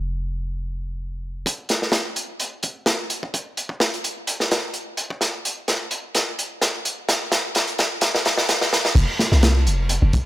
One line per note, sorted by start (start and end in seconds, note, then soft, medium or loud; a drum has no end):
0.00 1.44 F1 medium
1.46 kick loud
1.46 closed hi-hat medium
1.69 snare medium
1.69 closed hi-hat medium
1.82 snare soft
1.92 snare loud
1.92 closed hi-hat medium
2.16 closed hi-hat medium
2.40 closed hi-hat medium
2.63 kick medium
2.63 closed hi-hat medium
2.86 snare loud
2.86 closed hi-hat medium
3.10 closed hi-hat medium
3.23 kick medium
3.34 kick loud
3.34 closed hi-hat medium
3.57 closed hi-hat medium
3.69 kick medium
3.80 snare loud
3.80 closed hi-hat medium
3.93 closed hi-hat soft
4.04 closed hi-hat medium
4.27 closed hi-hat medium
4.40 snare soft
4.51 snare loud
4.51 closed hi-hat medium
4.74 closed hi-hat medium
4.97 closed hi-hat medium
5.10 kick medium
5.21 snare soft
5.21 closed hi-hat medium
5.45 closed hi-hat medium
5.68 snare medium
5.68 closed hi-hat medium
5.91 closed hi-hat medium
6.15 snare medium
6.15 closed hi-hat medium
6.39 closed hi-hat medium
6.61 snare medium
6.61 closed hi-hat medium
6.85 closed hi-hat medium
7.09 snare medium
7.09 closed hi-hat medium
7.32 snare medium
7.32 closed hi-hat medium
7.55 snare medium
7.55 closed hi-hat medium
7.67 closed hi-hat soft
7.78 snare medium
7.78 closed hi-hat medium
8.01 snare medium
8.01 closed hi-hat medium
8.15 snare medium
8.25 snare medium
8.25 closed hi-hat medium
8.38 snare medium
8.49 snare loud
8.49 closed hi-hat medium
8.61 snare medium
8.73 snare loud
8.73 closed hi-hat medium
8.85 snare medium
8.95 9.06 F1 loud
8.95 kick loud
8.95 closed hi-hat medium
8.95 crash medium
9.19 snare medium
9.19 closed hi-hat medium
9.32 9.68 C2 medium
9.32 snare soft
9.43 snare loud
9.43 closed hi-hat medium
9.66 9.99 F1 medium
9.66 closed hi-hat medium
9.89 closed hi-hat medium
10.02 10.11 F1 medium
10.13 kick loud
10.13 closed hi-hat medium